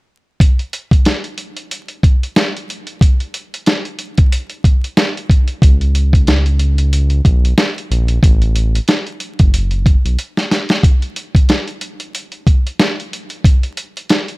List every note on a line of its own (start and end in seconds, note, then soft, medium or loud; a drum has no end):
0.40 kick loud
0.40 closed hi-hat medium
0.59 closed hi-hat soft
0.73 closed hi-hat medium
0.91 kick medium
0.91 closed hi-hat medium
1.05 snare loud
1.05 closed hi-hat medium
1.24 closed hi-hat soft
1.38 closed hi-hat medium
1.57 closed hi-hat medium
1.71 closed hi-hat medium
1.88 closed hi-hat soft
2.03 kick medium
2.03 closed hi-hat medium
2.23 closed hi-hat soft
2.36 snare loud
2.36 closed hi-hat medium
2.57 closed hi-hat soft
2.70 closed hi-hat medium
2.87 closed hi-hat soft
3.01 kick loud
3.01 closed hi-hat medium
3.20 closed hi-hat soft
3.34 closed hi-hat medium
3.54 closed hi-hat medium
3.66 snare loud
3.66 closed hi-hat medium
3.85 closed hi-hat soft
3.99 closed hi-hat medium
4.17 kick medium
4.17 closed hi-hat medium
4.32 closed hi-hat medium
4.50 closed hi-hat soft
4.64 kick medium
4.64 closed hi-hat medium
4.84 closed hi-hat medium
4.97 snare loud
4.97 closed hi-hat medium
5.17 closed hi-hat soft
5.30 kick medium
5.30 closed hi-hat medium
5.48 closed hi-hat soft
5.62 7.21 C#2 loud
5.62 kick loud
5.62 closed hi-hat medium
5.81 closed hi-hat soft
5.95 closed hi-hat medium
6.13 kick loud
6.13 closed hi-hat medium
6.27 snare loud
6.27 closed hi-hat medium
6.46 closed hi-hat soft
6.59 closed hi-hat medium
6.78 closed hi-hat medium
6.93 closed hi-hat medium
7.10 closed hi-hat soft
7.25 7.53 B1 loud
7.25 kick medium
7.25 closed hi-hat medium
7.45 closed hi-hat soft
7.58 snare loud
7.58 closed hi-hat medium
7.78 closed hi-hat soft
7.91 8.19 A#1 medium
7.91 closed hi-hat medium
8.08 closed hi-hat soft
8.23 8.80 A1 loud
8.23 kick loud
8.23 closed hi-hat medium
8.42 closed hi-hat soft
8.56 closed hi-hat medium
8.75 closed hi-hat medium
8.88 snare loud
8.88 closed hi-hat medium
9.07 closed hi-hat soft
9.20 closed hi-hat medium
9.39 9.96 F#1 medium
9.39 kick medium
9.39 closed hi-hat medium
9.54 closed hi-hat medium
9.71 closed hi-hat soft
9.86 kick medium
9.86 closed hi-hat medium
10.05 10.17 B1 medium
10.05 closed hi-hat soft
10.19 closed hi-hat medium
10.37 snare medium
10.37 closed hi-hat soft
10.51 snare medium
10.51 closed hi-hat medium
10.69 snare medium
10.69 closed hi-hat soft
10.83 kick loud
10.83 closed hi-hat medium
11.02 closed hi-hat soft
11.16 closed hi-hat medium
11.35 kick medium
11.35 closed hi-hat medium
11.49 snare loud
11.49 closed hi-hat medium
11.68 closed hi-hat soft
11.81 closed hi-hat medium
12.00 closed hi-hat medium
12.15 closed hi-hat medium
12.32 closed hi-hat soft
12.47 kick medium
12.47 closed hi-hat medium
12.67 closed hi-hat soft
12.79 snare loud
12.79 closed hi-hat medium
13.00 closed hi-hat soft
13.13 closed hi-hat medium
13.30 closed hi-hat soft
13.44 kick loud
13.44 closed hi-hat medium
13.63 closed hi-hat soft
13.77 closed hi-hat medium
13.97 closed hi-hat medium
14.09 snare loud
14.09 closed hi-hat medium
14.28 closed hi-hat soft